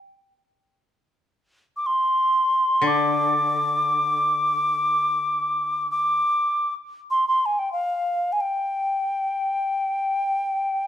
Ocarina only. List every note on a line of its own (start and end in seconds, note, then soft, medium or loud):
1.77 1.88 D6 medium
1.86 2.89 C6 medium
2.87 5.90 D6 medium
5.91 6.74 D6 medium
7.11 7.27 C6 medium
7.28 7.47 C6 medium
7.46 7.60 G#5 medium
7.59 7.72 G5 medium
7.73 8.34 F5 medium
8.32 8.42 G#5 soft
8.41 10.87 G5 medium